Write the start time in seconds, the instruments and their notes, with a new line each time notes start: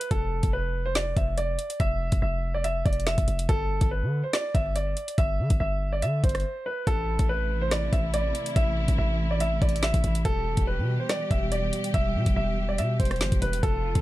0.01 closed hi-hat
0.11 808-style bass F1, grand piano A4, kick, closed hi-hat
0.43 808-style bass F1, kick, closed hi-hat
0.53 grand piano B4
0.86 grand piano C5
0.95 grand piano D5, snare, closed hi-hat
1.17 808-style bass F1, grand piano E5, kick, closed hi-hat
1.38 grand piano D5, closed hi-hat
1.59 closed hi-hat
1.70 closed hi-hat
1.80 808-style bass F1, grand piano E5, kick, closed hi-hat
2.12 808-style bass F1, kick, closed hi-hat
2.22 808-style bass F1, grand piano E5
2.54 grand piano D5
2.64 grand piano E5, closed hi-hat
2.85 808-style bass F1, grand piano D5, kick, closed hi-hat
2.93 closed hi-hat
3.00 closed hi-hat
3.07 grand piano E5, snare, closed hi-hat
3.18 808-style bass F1, kick, closed hi-hat
3.28 808-style bass F1, closed hi-hat
3.39 closed hi-hat
3.49 808-style bass G1, grand piano A4, kick, closed hi-hat
3.81 808-style bass G1, kick, closed hi-hat
3.91 grand piano B4
4.03 808-style bass D3
4.24 grand piano C5
4.33 grand piano D5, cross-stick, snare, closed hi-hat
4.54 808-style bass G1, grand piano E5, kick, closed hi-hat
4.76 grand piano D5, closed hi-hat
4.97 closed hi-hat
5.08 closed hi-hat
5.18 808-style bass G1, grand piano E5, kick, closed hi-hat
5.39 808-style bass D3
5.50 808-style bass G1, kick, closed hi-hat
5.60 808-style bass G1, grand piano E5
5.93 grand piano D5
6.02 808-style bass D3, grand piano E5, closed hi-hat
6.24 808-style bass G1, grand piano C5, kick, closed hi-hat
6.29 closed hi-hat
6.35 cross-stick, closed hi-hat
6.40 closed hi-hat
6.66 grand piano B4
6.87 808-style bass A1, string section C3 E3 A3 E4, grand piano A4, kick, closed hi-hat
7.19 808-style bass A1, kick, closed hi-hat
7.29 grand piano B4
7.62 grand piano C5
7.71 grand piano D5, cross-stick, snare, closed hi-hat
7.93 808-style bass A1, grand piano E5, kick, closed hi-hat
8.14 grand piano D5, closed hi-hat
8.35 closed hi-hat
8.46 closed hi-hat
8.56 808-style bass A1, grand piano E5, kick, closed hi-hat
8.88 808-style bass A1, kick, closed hi-hat
8.98 808-style bass A1, grand piano E5
9.31 grand piano D5
9.40 grand piano E5, closed hi-hat
9.62 808-style bass A1, grand piano D5, kick, closed hi-hat
9.69 closed hi-hat
9.76 closed hi-hat
9.83 grand piano E5, snare, closed hi-hat
9.94 808-style bass A1, kick, closed hi-hat
10.04 808-style bass A1, closed hi-hat
10.15 closed hi-hat
10.25 808-style bass E1, string section B2 G3 G4, grand piano A4, kick, closed hi-hat
10.57 808-style bass E1, kick, closed hi-hat
10.67 grand piano B4
10.79 808-style bass B2
11.00 grand piano C5
11.09 grand piano D5, cross-stick, snare, closed hi-hat
11.31 808-style bass E1, grand piano E5, kick, closed hi-hat
11.52 grand piano D5, closed hi-hat
11.73 closed hi-hat
11.84 closed hi-hat
11.94 808-style bass E1, grand piano E5, kick, closed hi-hat
12.15 808-style bass B2
12.26 808-style bass E1, kick, closed hi-hat
12.36 808-style bass E1, grand piano E5
12.69 grand piano D5
12.78 808-style bass B2, grand piano E5, closed hi-hat
13.00 808-style bass E1, grand piano C5, kick, closed hi-hat
13.05 closed hi-hat
13.11 cross-stick, closed hi-hat
13.16 closed hi-hat
13.21 808-style bass G1, snare, closed hi-hat
13.32 808-style bass E1, kick, closed hi-hat
13.42 808-style bass E1, grand piano B4, closed hi-hat
13.53 closed hi-hat
13.63 808-style bass F1, string section C3 F3 A3 F4, grand piano A4, kick, closed hi-hat
13.95 808-style bass F1, kick, closed hi-hat